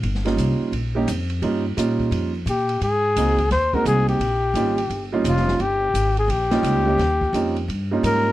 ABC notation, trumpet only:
X:1
M:4/4
L:1/8
Q:"Swing" 1/4=172
K:Ebmix
V:1 name="Trumpet"
z8 | z6 G2 | A4 c B A G- | G4- G z F2 |
G3 A G4- | G4 z2 B2 |]